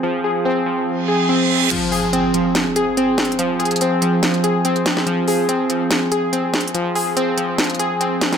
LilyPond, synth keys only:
\new Staff \with { instrumentName = "Synth keys" } { \time 4/4 \key f \minor \tempo 4 = 143 <f c' aes'>8 aes'8 c'8 f4 aes'8 c'4 | f8 aes'8 c'8 f4 aes'8 c'4 | f8 aes'8 c'8 f4 aes'8 c'4 | f8 aes'8 c'8 f4 aes'8 c'4 |
f8 aes'8 c'8 f4 aes'8 c'4 | }